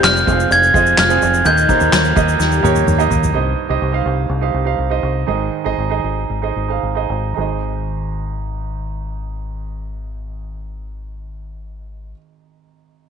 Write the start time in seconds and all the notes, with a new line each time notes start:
Already playing: C3 G3 G#3 C4 F4 G4 C5 F5 G5
0.03 F1 F6, snare, clap, ride, shaker
0.16 shaker
0.26 F1 C4 F4 G#4 C5 F5, kick, ride, shaker
0.39 ride, shaker
0.50 F1 G#6, ride, shaker
0.63 shaker
0.73 F1 F3 C4 F4 G#4 C5 D#5, kick, ride, shaker
0.86 shaker
0.98 F1 F6, snare, clap, ride, shaker
1.09 C4 F4 G#4 C5 G#5, shaker
1.22 F1, ride, shaker
1.34 shaker
1.45 D#2 A#2 D#3 A#3 D#4 G4 A#4 D#5 G6, ride, shaker
1.57 shaker
1.69 A#3 D#4 G4 A#4 C5, kick, ride, shaker
1.80 D#2, shaker
1.93 D#2, snare, clap, ride, shaker
2.05 shaker
2.15 D#2 A#3 D#4 G4 A#4 D#5, kick, ride, shaker
2.28 shaker
2.40 D#2 G3 G4, snare, shaker
2.52 shaker
2.63 D#2 A#3 D#4 G4 A#4 C#5, high tom, shaker
2.76 high tom, shaker
2.87 D#2, mid tom, shaker
2.98 A#3 D#4 G4 A#4 D#5, shaker
3.11 D#2, floor tom, shaker
3.23 floor tom, shaker
3.34 C2 G2 D#4 G4 C5 D#5
3.69 C2 D#4 G4 C5 D#5
3.82 C2
3.92 D#4 G4 C5 F5
4.06 C2
4.30 C2
4.41 D#4 G4 C5 F5
4.54 C2
4.65 D#4 G4 C5 F5
4.78 C2
4.90 D#4 G4 C5 D#5
5.03 C2
5.27 G#1 G#2 D#3 D#4 G#4 C5 D#5
5.64 G#1 D#4 G#4 C5 D#5
5.78 G#1
5.90 D#4 G#4 C5 D#5
6.04 G#1
6.29 G#1
6.42 D#4 G#4 C5 D#5
6.56 G#1
6.68 D#4 G#4 C5 F5
6.83 G#1
6.95 D#4 G#4 C5 D#5
7.09 G#1
7.34 G#1 D#4 G#4
7.39 C5 D#5